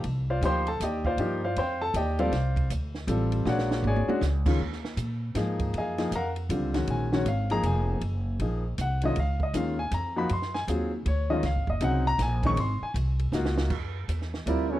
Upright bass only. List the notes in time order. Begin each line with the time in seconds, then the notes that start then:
0.04 C2
0.41 D2
0.80 D#2
1.17 G2
1.56 F2
1.94 D#2
2.32 C2
2.70 D2
3.07 A1
3.45 A#1
3.83 G#1
4.07 muted upright bass stroke
4.21 C#2
4.59 D#2
4.97 A#2
5.35 G#2
5.73 F#2
6.11 F2
6.49 C#2
6.88 A#1
7.25 G#1
7.63 F1
8.01 F#1
8.40 A#1
8.78 C2
9.17 C#2
9.54 D#2
9.91 F2
10.30 F#2
10.68 D#2
11.06 D2
11.43 C#2
11.56 G#1
11.69 F#1
11.81 C2
12.18 A#1
12.56 G#1
12.81 muted upright bass stroke
12.94 C2
13.32 C#2
13.70 F#2
14.08 E2
14.46 D2